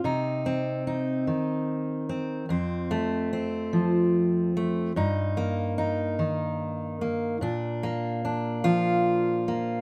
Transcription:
\new Staff \with { instrumentName = "Steel-string acoustic guitar" } { \time 6/8 \key c \dorian \tempo 4. = 49 << { c4. ees4. | f,4. f4. | g,4. ees4. | bes,4. <f f'>4. | } \\ { ees'8 c'8 ees'4. c'8 | c'8 a8 c'4. a8 | ees'8 bes8 ees'4. bes8 | d'8 bes8 d'4. bes8 | } >> }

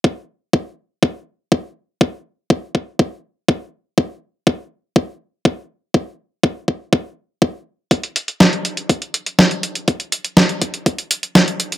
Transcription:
\new DrumStaff \with { instrumentName = "Drums" } \drummode { \time 4/4 \tempo 4 = 122 bd4 bd4 bd4 bd4 | bd4 bd8 bd8 bd4 bd4 | bd4 bd4 bd4 bd4 | bd4 bd8 bd8 bd4 bd4 |
<hh bd>16 hh16 hh16 hh16 <hh bd sn>16 hh16 hh16 hh16 <hh bd>16 hh16 hh16 hh16 <hh bd sn>16 hh16 hh16 hh16 | <hh bd>16 hh16 hh16 hh16 <hh bd sn>16 hh16 <hh bd>16 hh16 <hh bd>16 hh16 hh16 hh16 <hh bd sn>16 hh16 hh16 hh16 | }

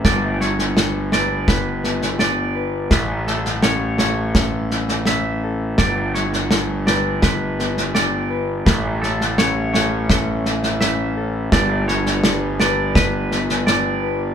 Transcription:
<<
  \new Staff \with { instrumentName = "Clean electric guitar" } { \time 4/4 \key g \lydian \tempo 4 = 84 d''8 cis''4 d''8 b'4 d''4 | b'8 a'8 cis''8 cis''4 r8 e''4 | d''8 cis''4 d''8 b'4 d''4 | b'8 a'8 cis''8 cis''4 r8 e''4 |
d''8 cis''4 d''8 b'4 d''4 | }
  \new Staff \with { instrumentName = "Clean electric guitar" } { \time 4/4 \key g \lydian g8 g8 d'8 b'8 d'8 b8 d'8 b'8 | a,8 a8 cis'8 a'8 cis'8 e'8 cis'8 a'8 | g8 g8 d'8 b'8 d'8 b8 d'8 b'8 | a,8 a8 cis'8 a'8 cis'8 e'8 cis'8 a'8 |
g8 g8 d'8 b'8 d'8 b8 d'8 b'8 | }
  \new Staff \with { instrumentName = "Harmonium" } { \time 4/4 \key g \lydian r1 | r1 | r1 | <a cis' e'>1 |
<g d' b'>1 | }
  \new Staff \with { instrumentName = "Picked electric bass" } { \clef bass \time 4/4 \key g \lydian g,,1 | a,,1 | g,,1 | a,,1 |
g,,1 | }
  \new DrumStaff \with { instrumentName = "Drums" } \drummode { \time 4/4 <bd sn>8 sn16 sn16 sn8 sn8 <bd sn>8 sn16 sn16 sn4 | <bd sn>8 sn16 sn16 sn8 sn8 <bd sn>8 sn16 sn16 sn4 | <bd sn>8 sn16 sn16 sn8 sn8 <bd sn>8 sn16 sn16 sn4 | <bd sn>8 sn16 sn16 sn8 sn8 <bd sn>8 sn16 sn16 sn4 |
<bd sn>8 sn16 sn16 sn8 sn8 <bd sn>8 sn16 sn16 sn4 | }
>>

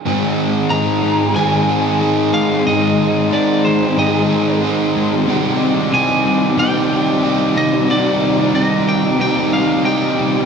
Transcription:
<<
  \new Staff \with { instrumentName = "Lead electric guitar" } { \time 4/4 \key aes \lydian \tempo 4 = 92 r4 bes''4 aes''4. f''8 | ees''4 d''8 c''8 ees''4 r4 | r4 aes''4 g''4. ees''8 | d''4 ees''8 g''8 g''8 f''8 g''4 | }
  \new Staff \with { instrumentName = "Analog synth pad" } { \time 4/4 \key aes \lydian << { <bes'' c'''>1~ | <bes'' c'''>1 | d'''1 | bes''1 | } \\ { <ees' aes'>1~ | <ees' aes'>1 | <g ees'>1~ | <g ees'>1 | } >> }
  \new Staff \with { instrumentName = "Overdriven electric guitar" } { \time 4/4 \key aes \lydian <aes, ees aes c' ees' aes'>4 <aes c' ees' aes'>4 <aes, ees aes c' ees' aes'>8 <aes c' ees' aes'>8 <aes c' ees' aes'>4 | <aes, ees aes c' ees' aes'>4 <aes c' ees' aes'>4 <aes, ees aes c' ees' aes'>8 <aes c' ees' aes'>8 <aes c' ees' aes'>4 | <c ees g ees' g'>4 <ees g ees' g'>4 <c ees g ees' g'>8 <g ees' g'>8 <ees g ees' g'>4 | <c ees g ees' g'>4 <ees g ees' g'>4 <c ees g ees' g'>8 <g ees' g'>8 <ees g ees' g'>4 | }
  \new Staff \with { instrumentName = "Distorted electric guitar" } { \clef bass \time 4/4 \key aes \lydian <aes, ees aes>4 <aes, ees aes>8 <ees aes>8 <aes, ees aes>4. <ees aes>8 | <aes, ees aes>4 <aes, ees aes>8 <ees aes>8 <aes, ees aes>4. <ees aes>8 | <c g c'>4 <c g c'>8 <g c'>8 <c g c'>4. <g c'>8 | <c g c'>4 <c g c'>8 <g c'>8 <c g c'>4. <g c'>8 | }
>>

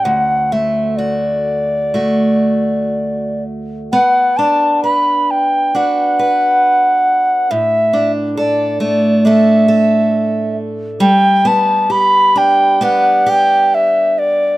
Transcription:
<<
  \new Staff \with { instrumentName = "Ocarina" } { \time 4/4 \key b \minor \tempo 4 = 66 fis''8 e''8 d''2~ d''8 r8 | fis''8 a''8 b''8 g''8 fis''2 | e''8 r8 d''8 d''8 e''4. r8 | g''8 a''8 b''8 g''8 fis''8 g''8 e''8 d''8 | }
  \new Staff \with { instrumentName = "Steel-string acoustic guitar" } { \time 4/4 \key b \minor d,8 a8 fis'4 <a fis'>2 | b8 d'8 b'4 <d' fis' b'>8 b'4. | a,8 d'8 a'8 a8 <a d' a'>8 a'4. | g8 b8 g'8 d'8 <b d' g'>8 g'4. | }
>>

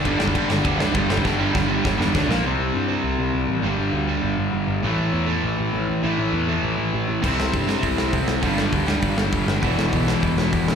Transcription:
<<
  \new Staff \with { instrumentName = "Distorted electric guitar" } { \clef bass \time 4/4 \key g \mixolydian \tempo 4 = 200 <g, d g b d' g'>1 | <g, d g b d' g'>2. r4 | r1 | r1 |
r1 | r1 | <c g c' e'>2~ <c g c' e'>8 <c g c' e'>8 <c g c' e'>4 | <g, d g b d'>2~ <g, d g b d'>8 <g, d g b d'>8 <g, d g b d'>4 |
<e g b e'>2~ <e g b e'>8 <e g b e'>8 <e g b e'>4 | }
  \new Staff \with { instrumentName = "Distorted electric guitar" } { \clef bass \time 4/4 \key g \mixolydian <g, d g>8 <g, d g>8 <g, d g>8 <g, d g>8 <g, d g>8 <g, d g>8 <g, d g>8 <g, d g>8 | <g, d g>8 <g, d g>8 <g, d g>8 <g, d g>8 <g, d g>8 <g, d g>8 <d a d'>8 <bes, f bes>8 | <c g c'>1 | <g, d g>1 |
<a, e a>1 | <a, e a>1 | <c g c'>1 | <g, d g>1 |
<e, b, e>1 | }
  \new Staff \with { instrumentName = "Overdriven electric guitar" } { \clef bass \time 4/4 \key g \mixolydian <g, d g>8 <g, d g>8 <g, d g>8 <g, d g>8 <g, d g>8 <g, d g>8 <g, d g>8 <g, d g>8 | <g, d g>8 <g, d g>8 <g, d g>8 <g, d g>8 <g, d g>8 <g, d g>8 <d a d'>8 <bes, f bes>8 | <c g c'>4. <c g c'>2~ <c g c'>8 | <g, d g>4. <g, d g>2~ <g, d g>8 |
<a, e a>4. <a, e a>2~ <a, e a>8 | <a, e a>4. <a, e a>2~ <a, e a>8 | <c g c'>4. <c g c'>2~ <c g c'>8 | <g, d g>4. <g, d g>2~ <g, d g>8 |
<e, b, e>4. <e, b, e>2~ <e, b, e>8 | }
  \new Staff \with { instrumentName = "Picked electric bass" } { \clef bass \time 4/4 \key g \mixolydian g,,8 g,,8 g,,8 g,,8 d,8 d,8 g,,8 g,,8 | g,,8 g,,8 g,,8 g,,8 g,,8 e,8 d,8 bes,,8 | c,8 c,8 g,4 c,8 c,8 c,8 a,,8 | g,,8 g,,8 d,4 g,,8 g,,8 g,,8 g,,8 |
a,,8 a,,8 e,4 a,,8 a,,8 a,,8 a,,8 | a,,8 a,,8 e,4 a,,8 a,,8 a,,8 a,,8 | c,8 c,8 g,4 c,8 c,8 c,8 c,8 | g,,8 g,,8 d,4 g,,8 g,,8 g,,8 g,,8 |
e,,8 e,,8 b,,4 e,,8 e,,8 e,,8 e,,8 | }
  \new DrumStaff \with { instrumentName = "Drums" } \drummode { \time 4/4 <bd cymr>8 sn16 bd16 <bd cymr>8 sn8 <bd cymr>8 sn8 <bd cymr>8 sn16 bd16 | <bd sn>4 <bd sn>4 <bd sn>8 sn8 <bd sn>8 sn8 | r4 r4 r4 r4 | r4 r4 r4 r4 |
r4 r4 r4 r4 | r4 r4 r4 r4 | <cymc bd>8 sn8 <hho bd>8 sn8 <hho bd>8 sn8 <hho bd>8 sn8 | <hho bd>8 sn8 <hho bd>8 sn8 <hho bd>8 sn8 <hho bd>8 sn8 |
<hho bd>8 sn8 <hho bd>8 sn8 <hho bd>8 sn8 <hho bd>8 sn8 | }
>>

